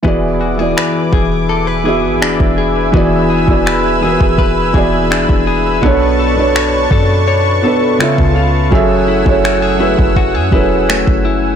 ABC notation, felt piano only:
X:1
M:4/4
L:1/16
Q:1/4=83
K:Emix
V:1 name="Felt piano"
[E,B,FGd]2 z [E,B,FGd]6 z [E,B,FGe]4- [E,B,FGe] z | [E,B,FGd]2 z [E,B,FGd]2 z [E,B,FG^AB]3 z [E,B,FGd]4- [E,B,FGd] z | [B,,B,DAc]2 z [B,,B,DAc]6 z [B,,B,DAB]2 [C,B,^EA=e]3 z | [F,CGAe]2 z [F,CGAc]2 z [F,CGAB]3 z [F,CGAB]4- [F,CGAB] z |]